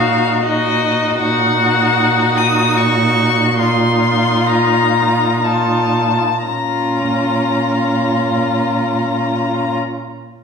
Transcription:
Already playing: A#2 D#4 F#4 F5
0.43 D#4 F#4 D#5
1.20 A#2 D#4 F#4 F#5
2.37 D#6
2.78 C#6
3.59 D#4 F4 C6
4.47 A#5
5.44 D#4 F4 A5
6.47 A#2 C#4 F4 A#5

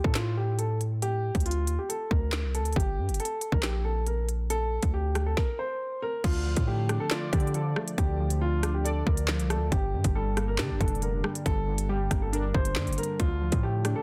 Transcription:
0.04 A2 A4, kick
0.15 F4, snare, clap, closed hi-hat
0.37 G4
0.59 A4, closed hi-hat
0.81 closed hi-hat
1.02 G4, closed hi-hat
1.35 D2, kick, closed hi-hat
1.40 closed hi-hat
1.46 F4, closed hi-hat
1.51 closed hi-hat
1.67 D#2, closed hi-hat
1.79 G4
1.89 A4, closed hi-hat
2.11 D2 A#4, kick
2.32 snare, clap, closed hi-hat
2.44 C2
2.55 A4, closed hi-hat
2.60 D2
2.65 closed hi-hat
2.73 G1 G4, kick, closed hi-hat
2.80 closed hi-hat
2.98 G2
3.09 G1, closed hi-hat
3.14 closed hi-hat
3.20 A4, closed hi-hat
3.25 closed hi-hat
3.41 closed hi-hat
3.52 A#1 A#4, kick
3.63 G4, snare, clap, closed hi-hat
3.85 A4
4.07 A#4, closed hi-hat
4.29 closed hi-hat
4.50 A4, closed hi-hat
4.83 D2, kick, closed hi-hat
4.94 G4
5.15 cross-stick, closed hi-hat
5.26 A4
5.37 A#4, kick, snare
5.59 C5
6.02 A#4
6.24 D2 D3 F4, kick, closed hi-hat, crash
6.46 F3
6.57 A2, kick, closed hi-hat
6.67 A3 G4
6.89 D4, cross-stick, closed hi-hat
7.00 A4
7.10 F4 D5, snare, clap, closed hi-hat
7.33 D3 G4, kick, closed hi-hat
7.40 closed hi-hat
7.47 closed hi-hat
7.54 F3 A4, closed hi-hat
7.76 A3, cross-stick
7.88 closed hi-hat
7.98 D2 D3 G4, kick, closed hi-hat
8.20 F3
8.30 closed hi-hat
8.41 F4
8.63 D4, cross-stick, closed hi-hat
8.74 G4
8.85 A4 D5, closed hi-hat
9.07 D2 D3 A#4, kick
9.17 closed hi-hat
9.28 F3, snare, clap
9.39 C2, closed hi-hat
9.50 A3 A4, cross-stick, closed hi-hat
9.56 D2
9.72 G1 G2 G4, kick, closed hi-hat
9.94 G2 D3
10.04 G1, kick, closed hi-hat
10.15 G3 A4
10.37 A#3, cross-stick, closed hi-hat
10.48 A#4
10.58 D3 D4 G4, snare, clap, closed hi-hat
10.70 G1
10.81 F1 G2 A4, kick, closed hi-hat
10.88 closed hi-hat
10.95 closed hi-hat
11.02 D3 A#4, closed hi-hat
11.24 G3, cross-stick
11.35 closed hi-hat
11.46 G1 G2 A4, kick, closed hi-hat
11.67 D3
11.78 closed hi-hat
11.89 G3 G4
12.11 G1 A#3, kick, cross-stick, closed hi-hat
12.22 A4
12.33 D4 A#4, closed hi-hat
12.54 G1 G2 C5, kick
12.65 closed hi-hat
12.76 G2 D3, snare, clap
12.87 G1, closed hi-hat
12.93 closed hi-hat
12.98 G3 A#4, closed hi-hat
13.03 closed hi-hat
13.20 D2 D3 F4, kick, closed hi-hat
13.42 F3
13.52 A2, kick, closed hi-hat
13.63 A3 G4
13.85 D4, cross-stick, closed hi-hat
13.96 A4

